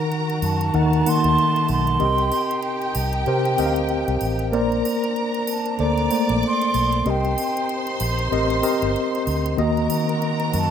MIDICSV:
0, 0, Header, 1, 7, 480
1, 0, Start_track
1, 0, Tempo, 632244
1, 1524, Time_signature, 4, 2, 24, 8
1, 8127, End_track
2, 0, Start_track
2, 0, Title_t, "Flute"
2, 0, Program_c, 0, 73
2, 339, Note_on_c, 0, 81, 97
2, 581, Note_on_c, 0, 82, 93
2, 592, Note_off_c, 0, 81, 0
2, 826, Note_on_c, 0, 84, 110
2, 837, Note_off_c, 0, 82, 0
2, 1295, Note_off_c, 0, 84, 0
2, 1307, Note_on_c, 0, 84, 113
2, 2225, Note_off_c, 0, 84, 0
2, 4178, Note_on_c, 0, 81, 85
2, 4420, Note_on_c, 0, 82, 94
2, 4431, Note_off_c, 0, 81, 0
2, 4891, Note_off_c, 0, 82, 0
2, 4910, Note_on_c, 0, 84, 102
2, 5390, Note_on_c, 0, 79, 84
2, 5401, Note_off_c, 0, 84, 0
2, 6096, Note_off_c, 0, 79, 0
2, 8032, Note_on_c, 0, 81, 97
2, 8127, Note_off_c, 0, 81, 0
2, 8127, End_track
3, 0, Start_track
3, 0, Title_t, "Violin section"
3, 0, Program_c, 1, 48
3, 0, Note_on_c, 1, 70, 88
3, 0, Note_on_c, 1, 82, 89
3, 538, Note_off_c, 1, 70, 0
3, 540, Note_off_c, 1, 82, 0
3, 561, Note_on_c, 1, 81, 83
3, 563, Note_on_c, 1, 57, 77
3, 1503, Note_off_c, 1, 81, 0
3, 1504, Note_off_c, 1, 57, 0
3, 1523, Note_on_c, 1, 67, 90
3, 1527, Note_on_c, 1, 79, 99
3, 3413, Note_off_c, 1, 67, 0
3, 3415, Note_off_c, 1, 79, 0
3, 3441, Note_on_c, 1, 70, 83
3, 3445, Note_on_c, 1, 82, 90
3, 4383, Note_off_c, 1, 70, 0
3, 4385, Note_off_c, 1, 82, 0
3, 4408, Note_on_c, 1, 74, 81
3, 4409, Note_on_c, 1, 86, 92
3, 5346, Note_off_c, 1, 74, 0
3, 5347, Note_off_c, 1, 86, 0
3, 5361, Note_on_c, 1, 84, 99
3, 5366, Note_on_c, 1, 72, 86
3, 7250, Note_off_c, 1, 84, 0
3, 7253, Note_off_c, 1, 72, 0
3, 7270, Note_on_c, 1, 70, 90
3, 7274, Note_on_c, 1, 82, 94
3, 8127, Note_off_c, 1, 70, 0
3, 8127, Note_off_c, 1, 82, 0
3, 8127, End_track
4, 0, Start_track
4, 0, Title_t, "Tine electric piano"
4, 0, Program_c, 2, 4
4, 0, Control_c, 2, 64, 127
4, 0, Note_on_c, 2, 51, 90
4, 0, Note_on_c, 2, 63, 86
4, 0, Note_on_c, 2, 70, 91
4, 0, Note_on_c, 2, 78, 96
4, 194, Note_off_c, 2, 51, 0
4, 195, Note_off_c, 2, 63, 0
4, 197, Note_off_c, 2, 70, 0
4, 198, Note_off_c, 2, 78, 0
4, 559, Note_on_c, 2, 51, 77
4, 561, Note_on_c, 2, 63, 68
4, 564, Note_on_c, 2, 70, 69
4, 568, Note_on_c, 2, 78, 90
4, 721, Note_off_c, 2, 51, 0
4, 722, Note_off_c, 2, 63, 0
4, 724, Note_off_c, 2, 70, 0
4, 725, Note_off_c, 2, 78, 0
4, 800, Note_on_c, 2, 51, 66
4, 803, Note_on_c, 2, 63, 56
4, 808, Note_on_c, 2, 58, 64
4, 808, Note_on_c, 2, 78, 83
4, 1242, Note_off_c, 2, 51, 0
4, 1244, Note_off_c, 2, 63, 0
4, 1246, Note_off_c, 2, 58, 0
4, 1246, Note_off_c, 2, 78, 0
4, 1515, Note_on_c, 2, 60, 73
4, 1517, Note_on_c, 2, 70, 67
4, 1518, Note_on_c, 2, 67, 78
4, 1522, Note_on_c, 2, 75, 86
4, 1535, Control_c, 2, 64, 0
4, 1664, Control_c, 2, 64, 127
4, 2112, Note_off_c, 2, 60, 0
4, 2114, Note_off_c, 2, 67, 0
4, 2114, Note_off_c, 2, 70, 0
4, 2116, Note_off_c, 2, 75, 0
4, 2481, Note_on_c, 2, 60, 86
4, 2483, Note_on_c, 2, 67, 74
4, 2487, Note_on_c, 2, 70, 76
4, 2489, Note_on_c, 2, 72, 96
4, 2642, Note_off_c, 2, 60, 0
4, 2643, Note_off_c, 2, 67, 0
4, 2645, Note_off_c, 2, 70, 0
4, 2646, Note_off_c, 2, 72, 0
4, 2718, Note_on_c, 2, 60, 78
4, 2721, Note_on_c, 2, 67, 77
4, 2723, Note_on_c, 2, 70, 68
4, 2726, Note_on_c, 2, 75, 75
4, 2777, Note_on_c, 2, 77, 86
4, 2782, Note_off_c, 2, 75, 0
4, 3161, Note_off_c, 2, 60, 0
4, 3163, Note_off_c, 2, 67, 0
4, 3164, Note_off_c, 2, 70, 0
4, 3191, Note_off_c, 2, 77, 0
4, 3433, Note_on_c, 2, 58, 92
4, 3437, Note_on_c, 2, 70, 84
4, 3440, Note_on_c, 2, 72, 83
4, 3442, Note_on_c, 2, 74, 98
4, 3452, Control_c, 2, 64, 0
4, 3590, Control_c, 2, 64, 127
4, 4031, Note_off_c, 2, 58, 0
4, 4033, Note_off_c, 2, 70, 0
4, 4035, Note_off_c, 2, 72, 0
4, 4036, Note_off_c, 2, 74, 0
4, 4395, Note_on_c, 2, 58, 73
4, 4397, Note_on_c, 2, 69, 67
4, 4401, Note_on_c, 2, 72, 68
4, 4406, Note_on_c, 2, 74, 90
4, 4559, Note_off_c, 2, 58, 0
4, 4560, Note_off_c, 2, 69, 0
4, 4562, Note_off_c, 2, 72, 0
4, 4564, Note_off_c, 2, 74, 0
4, 4637, Note_on_c, 2, 57, 64
4, 4638, Note_on_c, 2, 58, 71
4, 4638, Note_on_c, 2, 72, 59
4, 4643, Note_on_c, 2, 74, 69
4, 5081, Note_off_c, 2, 57, 0
4, 5081, Note_off_c, 2, 58, 0
4, 5081, Note_off_c, 2, 72, 0
4, 5084, Note_off_c, 2, 74, 0
4, 5356, Note_on_c, 2, 60, 75
4, 5360, Note_on_c, 2, 67, 76
4, 5362, Note_on_c, 2, 70, 69
4, 5366, Note_on_c, 2, 75, 80
4, 5374, Control_c, 2, 64, 0
4, 5491, Control_c, 2, 64, 127
4, 5952, Note_off_c, 2, 60, 0
4, 5954, Note_off_c, 2, 67, 0
4, 5955, Note_off_c, 2, 70, 0
4, 5957, Note_off_c, 2, 75, 0
4, 6313, Note_on_c, 2, 60, 91
4, 6317, Note_on_c, 2, 67, 76
4, 6317, Note_on_c, 2, 70, 79
4, 6321, Note_on_c, 2, 75, 97
4, 6477, Note_off_c, 2, 60, 0
4, 6479, Note_off_c, 2, 67, 0
4, 6479, Note_off_c, 2, 70, 0
4, 6481, Note_off_c, 2, 75, 0
4, 6545, Note_on_c, 2, 60, 79
4, 6552, Note_on_c, 2, 67, 72
4, 6552, Note_on_c, 2, 70, 80
4, 6554, Note_on_c, 2, 75, 85
4, 6994, Note_off_c, 2, 60, 0
4, 6997, Note_off_c, 2, 67, 0
4, 6997, Note_off_c, 2, 70, 0
4, 6998, Note_off_c, 2, 75, 0
4, 7268, Note_on_c, 2, 51, 94
4, 7273, Note_on_c, 2, 58, 79
4, 7274, Note_on_c, 2, 66, 83
4, 7278, Note_on_c, 2, 75, 106
4, 7291, Control_c, 2, 64, 0
4, 7426, Control_c, 2, 64, 127
4, 7867, Note_off_c, 2, 51, 0
4, 7870, Note_off_c, 2, 58, 0
4, 7870, Note_off_c, 2, 66, 0
4, 7872, Note_off_c, 2, 75, 0
4, 8127, End_track
5, 0, Start_track
5, 0, Title_t, "String section"
5, 0, Program_c, 3, 48
5, 0, Note_on_c, 3, 51, 72
5, 0, Note_on_c, 3, 66, 84
5, 1503, Note_off_c, 3, 66, 0
5, 1506, Note_off_c, 3, 51, 0
5, 1528, Note_on_c, 3, 48, 71
5, 1529, Note_on_c, 3, 63, 80
5, 3427, Note_off_c, 3, 48, 0
5, 3427, Note_off_c, 3, 63, 0
5, 3446, Note_on_c, 3, 62, 73
5, 3449, Note_on_c, 3, 60, 63
5, 5345, Note_off_c, 3, 62, 0
5, 5347, Note_off_c, 3, 60, 0
5, 5373, Note_on_c, 3, 48, 66
5, 5374, Note_on_c, 3, 60, 67
5, 5377, Note_on_c, 3, 63, 75
5, 7268, Note_off_c, 3, 48, 0
5, 7269, Note_off_c, 3, 63, 0
5, 7282, Note_on_c, 3, 51, 71
5, 7286, Note_on_c, 3, 66, 73
5, 8127, Note_off_c, 3, 51, 0
5, 8127, Note_off_c, 3, 60, 0
5, 8127, Note_off_c, 3, 66, 0
5, 8127, End_track
6, 0, Start_track
6, 0, Title_t, "Fingered electric bass"
6, 0, Program_c, 4, 33
6, 321, Note_on_c, 4, 42, 92
6, 533, Note_off_c, 4, 42, 0
6, 565, Note_on_c, 4, 39, 96
6, 775, Note_off_c, 4, 39, 0
6, 945, Note_on_c, 4, 39, 97
6, 1032, Note_off_c, 4, 39, 0
6, 1287, Note_on_c, 4, 35, 100
6, 1497, Note_off_c, 4, 35, 0
6, 1531, Note_on_c, 4, 36, 109
6, 1739, Note_off_c, 4, 36, 0
6, 2244, Note_on_c, 4, 36, 92
6, 2455, Note_off_c, 4, 36, 0
6, 2482, Note_on_c, 4, 48, 108
6, 2694, Note_off_c, 4, 48, 0
6, 2722, Note_on_c, 4, 38, 65
6, 3056, Note_off_c, 4, 38, 0
6, 3096, Note_on_c, 4, 36, 95
6, 3188, Note_off_c, 4, 36, 0
6, 3199, Note_on_c, 4, 33, 88
6, 3442, Note_off_c, 4, 33, 0
6, 3442, Note_on_c, 4, 34, 105
6, 3653, Note_off_c, 4, 34, 0
6, 4399, Note_on_c, 4, 38, 101
6, 4612, Note_off_c, 4, 38, 0
6, 4782, Note_on_c, 4, 34, 105
6, 4871, Note_off_c, 4, 34, 0
6, 5122, Note_on_c, 4, 35, 92
6, 5333, Note_off_c, 4, 35, 0
6, 5361, Note_on_c, 4, 36, 119
6, 5572, Note_off_c, 4, 36, 0
6, 6079, Note_on_c, 4, 34, 95
6, 6291, Note_off_c, 4, 34, 0
6, 6317, Note_on_c, 4, 33, 97
6, 6530, Note_off_c, 4, 33, 0
6, 6699, Note_on_c, 4, 31, 96
6, 6788, Note_off_c, 4, 31, 0
6, 7039, Note_on_c, 4, 38, 96
6, 7251, Note_off_c, 4, 38, 0
6, 7279, Note_on_c, 4, 39, 119
6, 7491, Note_off_c, 4, 39, 0
6, 8000, Note_on_c, 4, 42, 99
6, 8127, Note_off_c, 4, 42, 0
6, 8127, End_track
7, 0, Start_track
7, 0, Title_t, "Drums"
7, 88, Note_on_c, 9, 80, 50
7, 164, Note_off_c, 9, 80, 0
7, 225, Note_on_c, 9, 80, 54
7, 301, Note_off_c, 9, 80, 0
7, 322, Note_on_c, 9, 81, 65
7, 397, Note_off_c, 9, 81, 0
7, 463, Note_on_c, 9, 80, 51
7, 539, Note_off_c, 9, 80, 0
7, 561, Note_on_c, 9, 80, 45
7, 637, Note_off_c, 9, 80, 0
7, 708, Note_on_c, 9, 80, 54
7, 784, Note_off_c, 9, 80, 0
7, 808, Note_on_c, 9, 81, 81
7, 884, Note_off_c, 9, 81, 0
7, 943, Note_on_c, 9, 80, 52
7, 1019, Note_off_c, 9, 80, 0
7, 1051, Note_on_c, 9, 80, 45
7, 1127, Note_off_c, 9, 80, 0
7, 1186, Note_on_c, 9, 80, 49
7, 1262, Note_off_c, 9, 80, 0
7, 1280, Note_on_c, 9, 81, 58
7, 1356, Note_off_c, 9, 81, 0
7, 1421, Note_on_c, 9, 80, 45
7, 1497, Note_off_c, 9, 80, 0
7, 1518, Note_on_c, 9, 80, 49
7, 1594, Note_off_c, 9, 80, 0
7, 1658, Note_on_c, 9, 80, 46
7, 1734, Note_off_c, 9, 80, 0
7, 1758, Note_on_c, 9, 81, 66
7, 1834, Note_off_c, 9, 81, 0
7, 1905, Note_on_c, 9, 80, 59
7, 1981, Note_off_c, 9, 80, 0
7, 1993, Note_on_c, 9, 80, 53
7, 2069, Note_off_c, 9, 80, 0
7, 2138, Note_on_c, 9, 80, 45
7, 2214, Note_off_c, 9, 80, 0
7, 2238, Note_on_c, 9, 81, 74
7, 2314, Note_off_c, 9, 81, 0
7, 2375, Note_on_c, 9, 80, 49
7, 2451, Note_off_c, 9, 80, 0
7, 2477, Note_on_c, 9, 80, 47
7, 2552, Note_off_c, 9, 80, 0
7, 2622, Note_on_c, 9, 80, 52
7, 2698, Note_off_c, 9, 80, 0
7, 2719, Note_on_c, 9, 81, 68
7, 2795, Note_off_c, 9, 81, 0
7, 2856, Note_on_c, 9, 80, 50
7, 2932, Note_off_c, 9, 80, 0
7, 2952, Note_on_c, 9, 80, 45
7, 3027, Note_off_c, 9, 80, 0
7, 3098, Note_on_c, 9, 80, 51
7, 3174, Note_off_c, 9, 80, 0
7, 3194, Note_on_c, 9, 81, 57
7, 3270, Note_off_c, 9, 81, 0
7, 3334, Note_on_c, 9, 80, 50
7, 3410, Note_off_c, 9, 80, 0
7, 3443, Note_on_c, 9, 80, 49
7, 3519, Note_off_c, 9, 80, 0
7, 3584, Note_on_c, 9, 80, 47
7, 3660, Note_off_c, 9, 80, 0
7, 3684, Note_on_c, 9, 81, 64
7, 3760, Note_off_c, 9, 81, 0
7, 3824, Note_on_c, 9, 80, 49
7, 3900, Note_off_c, 9, 80, 0
7, 3919, Note_on_c, 9, 80, 51
7, 3995, Note_off_c, 9, 80, 0
7, 4058, Note_on_c, 9, 80, 53
7, 4134, Note_off_c, 9, 80, 0
7, 4156, Note_on_c, 9, 81, 73
7, 4232, Note_off_c, 9, 81, 0
7, 4295, Note_on_c, 9, 80, 44
7, 4370, Note_off_c, 9, 80, 0
7, 4394, Note_on_c, 9, 80, 47
7, 4470, Note_off_c, 9, 80, 0
7, 4537, Note_on_c, 9, 80, 51
7, 4613, Note_off_c, 9, 80, 0
7, 4636, Note_on_c, 9, 81, 70
7, 4712, Note_off_c, 9, 81, 0
7, 4778, Note_on_c, 9, 80, 49
7, 4854, Note_off_c, 9, 80, 0
7, 4883, Note_on_c, 9, 80, 48
7, 4958, Note_off_c, 9, 80, 0
7, 5023, Note_on_c, 9, 80, 53
7, 5099, Note_off_c, 9, 80, 0
7, 5119, Note_on_c, 9, 81, 62
7, 5195, Note_off_c, 9, 81, 0
7, 5257, Note_on_c, 9, 80, 50
7, 5333, Note_off_c, 9, 80, 0
7, 5358, Note_on_c, 9, 80, 56
7, 5434, Note_off_c, 9, 80, 0
7, 5502, Note_on_c, 9, 80, 46
7, 5578, Note_off_c, 9, 80, 0
7, 5602, Note_on_c, 9, 81, 70
7, 5678, Note_off_c, 9, 81, 0
7, 5747, Note_on_c, 9, 80, 54
7, 5823, Note_off_c, 9, 80, 0
7, 5841, Note_on_c, 9, 80, 56
7, 5917, Note_off_c, 9, 80, 0
7, 5974, Note_on_c, 9, 80, 53
7, 6050, Note_off_c, 9, 80, 0
7, 6074, Note_on_c, 9, 81, 75
7, 6149, Note_off_c, 9, 81, 0
7, 6216, Note_on_c, 9, 80, 48
7, 6292, Note_off_c, 9, 80, 0
7, 6323, Note_on_c, 9, 80, 46
7, 6399, Note_off_c, 9, 80, 0
7, 6455, Note_on_c, 9, 80, 50
7, 6531, Note_off_c, 9, 80, 0
7, 6555, Note_on_c, 9, 81, 72
7, 6631, Note_off_c, 9, 81, 0
7, 6697, Note_on_c, 9, 80, 49
7, 6773, Note_off_c, 9, 80, 0
7, 6803, Note_on_c, 9, 80, 47
7, 6879, Note_off_c, 9, 80, 0
7, 6946, Note_on_c, 9, 80, 52
7, 7022, Note_off_c, 9, 80, 0
7, 7038, Note_on_c, 9, 81, 61
7, 7114, Note_off_c, 9, 81, 0
7, 7181, Note_on_c, 9, 80, 52
7, 7256, Note_off_c, 9, 80, 0
7, 7276, Note_on_c, 9, 80, 46
7, 7352, Note_off_c, 9, 80, 0
7, 7419, Note_on_c, 9, 80, 43
7, 7495, Note_off_c, 9, 80, 0
7, 7515, Note_on_c, 9, 81, 66
7, 7591, Note_off_c, 9, 81, 0
7, 7662, Note_on_c, 9, 80, 54
7, 7738, Note_off_c, 9, 80, 0
7, 7758, Note_on_c, 9, 80, 57
7, 7834, Note_off_c, 9, 80, 0
7, 7893, Note_on_c, 9, 80, 50
7, 7969, Note_off_c, 9, 80, 0
7, 7999, Note_on_c, 9, 81, 77
7, 8074, Note_off_c, 9, 81, 0
7, 8127, End_track
0, 0, End_of_file